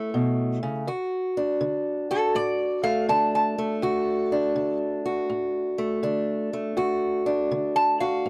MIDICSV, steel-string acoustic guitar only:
0, 0, Header, 1, 2, 480
1, 0, Start_track
1, 0, Key_signature, 2, "major"
1, 0, Tempo, 737101
1, 566, Time_signature, 4, 2, 24, 8
1, 5401, End_track
2, 0, Start_track
2, 0, Title_t, "Steel-string acoustic guitar"
2, 0, Program_c, 0, 25
2, 0, Note_on_c, 0, 57, 55
2, 0, Note_on_c, 0, 61, 55
2, 0, Note_on_c, 0, 64, 63
2, 91, Note_on_c, 0, 47, 57
2, 406, Note_off_c, 0, 47, 0
2, 409, Note_on_c, 0, 49, 58
2, 552, Note_off_c, 0, 57, 0
2, 554, Note_off_c, 0, 61, 0
2, 568, Note_off_c, 0, 49, 0
2, 569, Note_on_c, 0, 38, 75
2, 570, Note_off_c, 0, 64, 0
2, 572, Note_on_c, 0, 66, 62
2, 893, Note_on_c, 0, 62, 52
2, 1015, Note_off_c, 0, 38, 0
2, 1046, Note_on_c, 0, 50, 63
2, 1369, Note_off_c, 0, 66, 0
2, 1372, Note_on_c, 0, 66, 61
2, 1494, Note_off_c, 0, 50, 0
2, 1530, Note_on_c, 0, 45, 65
2, 1846, Note_on_c, 0, 57, 58
2, 1976, Note_off_c, 0, 45, 0
2, 2010, Note_off_c, 0, 62, 0
2, 2010, Note_on_c, 0, 50, 58
2, 2013, Note_on_c, 0, 62, 54
2, 2331, Note_off_c, 0, 57, 0
2, 2334, Note_on_c, 0, 57, 58
2, 2455, Note_off_c, 0, 50, 0
2, 2489, Note_on_c, 0, 38, 80
2, 2492, Note_off_c, 0, 66, 0
2, 2495, Note_on_c, 0, 66, 64
2, 2811, Note_off_c, 0, 62, 0
2, 2814, Note_on_c, 0, 62, 55
2, 2935, Note_off_c, 0, 38, 0
2, 2967, Note_on_c, 0, 50, 61
2, 3289, Note_off_c, 0, 66, 0
2, 3292, Note_on_c, 0, 66, 60
2, 3414, Note_off_c, 0, 50, 0
2, 3449, Note_on_c, 0, 45, 63
2, 3763, Note_off_c, 0, 57, 0
2, 3765, Note_on_c, 0, 57, 55
2, 3894, Note_off_c, 0, 45, 0
2, 3925, Note_on_c, 0, 50, 60
2, 3926, Note_off_c, 0, 62, 0
2, 3929, Note_on_c, 0, 62, 55
2, 4252, Note_off_c, 0, 57, 0
2, 4254, Note_on_c, 0, 57, 52
2, 4373, Note_off_c, 0, 50, 0
2, 4407, Note_on_c, 0, 38, 73
2, 4408, Note_off_c, 0, 66, 0
2, 4410, Note_on_c, 0, 66, 63
2, 4726, Note_off_c, 0, 62, 0
2, 4728, Note_on_c, 0, 62, 53
2, 4854, Note_off_c, 0, 38, 0
2, 4893, Note_on_c, 0, 50, 65
2, 5214, Note_off_c, 0, 66, 0
2, 5217, Note_on_c, 0, 66, 61
2, 5337, Note_off_c, 0, 50, 0
2, 5376, Note_on_c, 0, 45, 66
2, 5401, Note_off_c, 0, 45, 0
2, 5401, Note_off_c, 0, 57, 0
2, 5401, Note_off_c, 0, 62, 0
2, 5401, Note_off_c, 0, 66, 0
2, 5401, End_track
0, 0, End_of_file